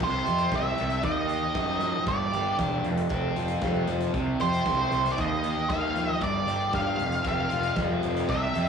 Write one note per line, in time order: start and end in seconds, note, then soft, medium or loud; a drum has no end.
0.00 0.18 C2 medium
0.00 1.02 C3 medium
0.00 0.55 C5 medium
0.00 kick loud
0.00 crash loud
0.26 0.46 F2 medium
0.26 1.04 G4 medium
0.26 closed hi-hat medium
0.38 closed hi-hat medium
0.51 0.70 C2 medium
0.51 1.05 E4 medium
0.51 1.04 E5 loud
0.51 kick loud
0.51 snare loud
0.51 closed hi-hat medium
0.78 0.98 C2 medium
0.78 1.04 C4 medium
0.78 closed hi-hat medium
0.90 closed hi-hat medium
1.03 1.40 D#2 medium
1.03 2.07 D#3 medium
1.03 2.04 D#5 medium
1.03 kick loud
1.03 closed hi-hat medium
1.27 2.06 G4 medium
1.27 closed hi-hat medium
1.54 1.92 F#2 medium
1.54 2.07 D#4 medium
1.54 kick loud
1.54 snare loud
1.54 closed hi-hat medium
1.80 2.07 F3 medium
1.80 closed hi-hat medium
2.06 2.25 G1 medium
2.06 2.84 G2 medium
2.06 2.56 D5 medium
2.06 kick loud
2.06 closed hi-hat medium
2.32 2.52 G1 medium
2.32 2.84 G4 medium
2.32 closed hi-hat medium
2.58 2.78 E1 medium
2.58 2.85 D4 medium
2.58 kick loud
2.58 snare loud
2.58 closed hi-hat medium
2.84 3.03 F1 medium
2.84 4.14 F2 medium
2.84 closed hi-hat medium
2.97 closed hi-hat medium
3.09 3.29 F1 medium
3.09 3.61 C4 medium
3.09 kick loud
3.09 closed hi-hat medium
3.36 3.56 F1 medium
3.36 4.14 F4 medium
3.36 closed hi-hat medium
3.48 closed hi-hat medium
3.61 3.81 F1 medium
3.61 4.14 C4 medium
3.61 kick loud
3.61 snare loud
3.61 closed hi-hat medium
3.87 4.07 F1 medium
3.87 4.14 F3 medium
3.87 closed hi-hat medium
4.00 closed hi-hat medium
4.14 4.33 C2 medium
4.14 5.16 C3 medium
4.14 kick loud
4.14 closed hi-hat medium
4.40 4.59 F2 medium
4.40 5.18 G4 medium
4.40 5.14 C5 medium
4.40 closed hi-hat medium
4.53 closed hi-hat medium
4.65 4.85 C2 medium
4.65 5.18 E4 medium
4.65 kick loud
4.65 snare loud
4.65 closed hi-hat medium
4.92 5.10 C2 medium
4.92 5.18 C4 medium
4.92 closed hi-hat medium
5.06 snare soft
5.06 closed hi-hat medium
5.12 5.18 D5 medium
5.17 5.55 D#2 medium
5.17 6.21 D#3 medium
5.17 kick loud
5.17 closed hi-hat medium
5.21 5.69 D#5 loud
5.43 6.21 G4 medium
5.43 closed hi-hat medium
5.70 6.06 D#2 medium
5.70 6.22 D#4 medium
5.70 6.13 F5 loud
5.70 kick loud
5.70 snare loud
5.70 closed hi-hat medium
5.95 6.21 F3 medium
5.95 closed hi-hat medium
6.13 6.23 D#5 loud
6.21 6.40 G1 medium
6.21 6.98 G2 medium
6.21 6.74 D5 loud
6.21 kick loud
6.21 closed hi-hat medium
6.47 6.66 G1 medium
6.47 6.99 G4 medium
6.47 closed hi-hat medium
6.73 6.92 G1 medium
6.73 6.99 D4 medium
6.73 7.27 F5 loud
6.73 kick loud
6.73 snare loud
6.73 closed hi-hat medium
6.99 7.18 F1 medium
6.99 8.29 F2 medium
6.99 closed hi-hat medium
7.12 closed hi-hat medium
7.24 7.44 F1 medium
7.24 7.75 C4 medium
7.24 kick loud
7.24 closed hi-hat medium
7.28 7.75 F5 medium
7.50 7.71 F1 medium
7.50 8.28 F4 medium
7.50 closed hi-hat medium
7.63 closed hi-hat medium
7.76 7.95 F1 medium
7.76 8.28 C4 medium
7.76 kick loud
7.76 snare loud
7.76 closed hi-hat medium
8.02 8.23 F1 medium
8.02 8.29 F3 medium
8.02 closed hi-hat medium
8.16 closed hi-hat medium
8.28 8.47 C2 medium
8.28 8.69 C3 medium
8.28 8.69 C4 medium
8.28 8.69 E4 medium
8.28 8.69 G4 medium
8.28 8.69 C5 medium
8.28 8.69 E5 medium
8.28 kick loud
8.28 closed hi-hat medium
8.53 8.69 F2 medium
8.53 8.69 G4 medium
8.53 closed hi-hat medium